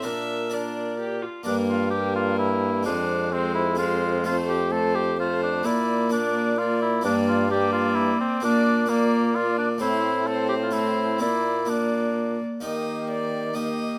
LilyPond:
<<
  \new Staff \with { instrumentName = "Violin" } { \time 3/4 \key bes \lydian \tempo 4 = 129 e''4 d''4. r8 | bes'4 bes'2 | c''4 c''4 c''4 | c''4 c''4 c''4 |
d''4 d''4 d''4 | d''4 d''2 | d''4 d''4 d''4 | c''4 c''4 c''4 |
d''4 d''4. r8 | ees''4 d''4 ees''4 | }
  \new Staff \with { instrumentName = "Cor anglais" } { \time 3/4 \key bes \lydian bes'4 bes'4. r8 | d'8 f'8 g'8 f'8 e'4 | d'4 c'8 e'8 f'4 | f'8 g'8 a'8 g'8 f'8 d'8 |
e'4 d'4 f'8 e'8 | d'8 f'8 g'8 f'8 e'8 c'8 | d'4 bes4 f'8 d'8 | e'4 a'8 g'16 f'16 e'4 |
e'4 d'4. r8 | g'2 g'4 | }
  \new Staff \with { instrumentName = "Harpsichord" } { \time 3/4 \key bes \lydian <d' bes'>4 <d' bes'>2 | <bes d'>2. | <aes c'>2 <aes c'>4 | <a c'>2. |
<bes d'>4 <bes d'>2 | <bes d'>2. | <bes d'>4 <bes d'>2 | <a c'>2 <a c'>4 |
<bes d'>4 <bes d'>2 | <bes ees'>2 <bes ees'>4 | }
  \new Staff \with { instrumentName = "Harpsichord" } { \clef bass \time 3/4 \key bes \lydian bes,2~ bes,8 r8 | g,2. | f,2.~ | f,2. |
bes,2. | g,2~ g,8 r8 | bes,2. | a,2. |
bes,2~ bes,8 r8 | ees2. | }
  \new Staff \with { instrumentName = "Viola" } { \time 3/4 \key bes \lydian d'4 d'4 g'8 f'8 | bes4 bes2 | aes4 aes4 aes4 | a4 a4 a4 |
bes4 bes4 bes4 | bes4 bes2 | bes4 bes4 bes4 | c'4 c'4 c'4 |
bes4 bes4. r8 | bes2 bes4 | }
  \new Staff \with { instrumentName = "Bassoon" } { \clef bass \time 3/4 \key bes \lydian bes,2~ bes,8 r8 | g,2. | f,2.~ | f,2. |
bes,2. | g,2~ g,8 r8 | bes,2. | a,2. |
bes,2~ bes,8 r8 | ees2. | }
>>